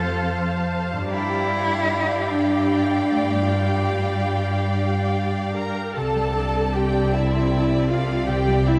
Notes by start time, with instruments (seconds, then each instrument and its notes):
Already playing: harp F2 F3 A3 C4 C5, cello section F2, cello A4, viola section C5 F5, violin section F5 A5
0.93 harp G2
0.97 harp D4
1.02 harp G4
1.06 harp A#5
1.10 cello section G2, cello E4, viola section G4 D5, violin section F5 G5
2.29 cello D4
3.11 cello A3
3.33 harp G2
3.38 harp D4
3.42 harp F4
3.47 cello G3, harp A#4
5.55 viola section A#4, violin section A#5
5.95 double bass section C2, harp C3, cello section C3, viola section A4, violin section D5 A5
6.15 harp G3
6.35 harp D4
6.55 harp G4
6.73 viola section G4, harp C5, violin section G5
6.93 harp D5
7.12 viola section E4, violin section E5, harp G5
7.32 harp C6
7.51 harp G5
7.70 harp D5
7.89 viola section F4, harp C5, violin section F5
8.09 harp G4
8.27 harp C3, viola section G4, violin section G5
8.47 harp G3
8.66 harp D4, viola section E4, violin section E5